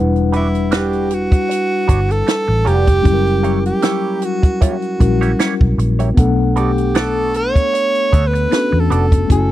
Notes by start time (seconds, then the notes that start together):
Already playing: E1 G3 D4 E4 B4 F#5
0.16 closed hi-hat
0.32 G3 D4 E4 F#4 B4, closed hi-hat
0.55 closed hi-hat
0.71 G3 D4 F#4 G4 B4, snare, closed hi-hat
0.93 closed hi-hat
1.11 F#4, muted clean electric guitar stroke, closed hi-hat
1.31 muted clean electric guitar stroke, kick, closed hi-hat
1.49 muted clean electric guitar stroke, closed hi-hat
1.88 G1 G3 D4 F#4 C#5, kick, closed hi-hat
2.09 A4, muted clean electric guitar stroke, closed hi-hat
2.27 muted clean electric guitar stroke, snare, closed hi-hat
2.48 A1, muted clean electric guitar stroke
2.65 F1 G3 D4 F#4 G4 B4, closed hi-hat
2.87 muted clean electric guitar stroke, kick, closed hi-hat
3.02 F#1 F#3 G3 C#4 E4, kick, closed hi-hat
3.07 G4
3.13 A#4
3.27 closed hi-hat
3.43 A#3 E4 G4 C#5, closed hi-hat
3.66 G4, closed hi-hat
3.82 A#3 E4 G4 C#5, snare, closed hi-hat
4.22 F#4, muted clean electric guitar stroke, closed hi-hat
4.42 muted clean electric guitar stroke, kick, closed hi-hat
4.61 A#3 E4 F#4 G4 C#5, kick, closed hi-hat
4.82 closed hi-hat
4.99 A#1 G3 C#4 E4 F#4 A#4, muted clean electric guitar stroke, kick, closed hi-hat
5.21 A#3 E4 G4 C#5, closed hi-hat
5.39 A#3 E4 G4 C#5, snare, closed hi-hat
5.61 B1, kick
5.78 A#1, muted clean electric guitar stroke, closed hi-hat
5.99 A#3 E4 G4 C#5, closed hi-hat
6.15 B1 A3 B3 D4 F#5, kick, closed hi-hat
6.20 A4
6.56 B3 F#4 G4 A4 D5, closed hi-hat
6.78 closed hi-hat
6.95 B3 F#4 A4 D5, snare, closed hi-hat
7.34 C#5, muted clean electric guitar stroke, closed hi-hat
7.55 muted clean electric guitar stroke, kick, closed hi-hat
7.73 muted clean electric guitar stroke, closed hi-hat
7.95 closed hi-hat
8.12 D2 B3 F#4 A4 E5, kick, closed hi-hat
8.27 B4
8.33 muted clean electric guitar stroke, closed hi-hat
8.51 B3 C#4 D4 F#4 A4, muted clean electric guitar stroke, snare, closed hi-hat
8.72 E2, muted clean electric guitar stroke
8.79 A4
8.90 F1 B3 F#4 A4 D5, closed hi-hat
9.12 muted clean electric guitar stroke, kick, closed hi-hat
9.27 F#1 A3 C#4 E4 F#4, kick, closed hi-hat
9.32 A4 G#5